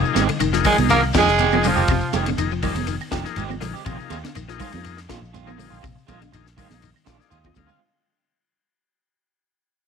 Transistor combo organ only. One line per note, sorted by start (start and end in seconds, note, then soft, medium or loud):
0.00 0.23 F3 medium
0.00 0.24 A#3 medium
0.00 0.24 D#4 medium
0.00 0.24 G#4 loud
0.53 1.04 F3 medium
0.53 1.05 A#3 medium
0.53 1.05 D#4 medium
0.53 1.05 G#4 loud
1.52 1.84 F3 medium
1.52 1.84 A#3 medium
1.52 1.84 D#4 medium
1.52 1.85 G#4 medium
2.14 2.27 F3 medium
2.14 2.27 A#3 medium
2.14 2.28 D#4 medium
2.14 2.28 G#4 medium
2.37 2.51 F3 medium
2.37 2.52 A#3 medium
2.37 2.52 D#4 medium
2.37 2.52 G#4 loud
2.62 2.95 F3 medium
2.62 2.95 A#3 medium
2.62 2.96 D#4 medium
2.62 2.96 G#4 medium
3.24 3.43 F3 loud
3.24 3.44 A#3 loud
3.24 3.44 D#4 medium
3.24 3.44 G#4 loud
3.60 3.74 F3 medium
3.60 3.75 A#3 medium
3.60 3.75 D#4 medium
3.60 3.75 G#4 medium
3.85 4.18 F3 medium
3.85 4.18 A#3 loud
3.85 4.19 D#4 medium
3.85 4.19 G#4 loud
4.48 4.99 F3 loud
4.48 5.00 A#3 medium
4.48 5.00 D#4 medium
4.48 5.00 G#4 loud
5.46 5.78 F3 loud
5.46 5.79 A#3 medium
5.46 5.79 D#4 medium
5.46 5.79 G#4 loud
6.08 6.22 F3 loud
6.08 6.22 A#3 medium
6.08 6.22 D#4 medium
6.08 6.23 G#4 loud
6.33 6.46 F3 medium
6.33 6.47 A#3 medium
6.33 6.47 D#4 medium
6.33 6.47 G#4 loud
6.57 6.90 F3 medium
6.57 6.90 A#3 medium
6.57 6.90 D#4 medium
6.57 6.91 G#4 medium
7.08 7.30 D5 medium
7.19 7.38 F3 loud
7.19 7.39 A#3 medium
7.19 7.39 D#4 loud
7.19 7.39 G#4 loud
7.32 7.55 D#5 medium
7.56 7.70 F3 medium
7.56 7.70 A#3 medium
7.56 7.70 D#4 medium
7.56 7.70 G#4 medium
7.56 7.79 F5 medium